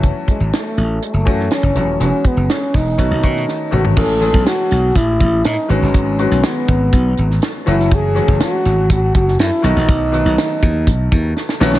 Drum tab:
CC |----------------|----------------|x---------------|----------------|
HH |x-x-x-x-x-x-x-x-|x-x-x-o-x-x-----|--x-x-x-x-x-x-x-|x-x-x-x-x-x-x-x-|
SD |----o------oo---|----o-o----oo---|---oo-o-----o--o|---oo------oo--o|
T2 |----------------|--------------o-|----------------|----------------|
FT |----------------|---------------o|----------------|----------------|
BD |o-o-------o--o--|--o---o-o-o-----|o--o----o-o-----|o-----o-o-------|

CC |----------------|----------------|
HH |x-x-x-x-x-x-x-x-|x-x-x-x-x-x-----|
SD |---oo-o----oo--o|---oo-------oooo|
T2 |----------------|----------------|
FT |----------------|----------------|
BD |o--o----o-o-----|o-----o-o-o-----|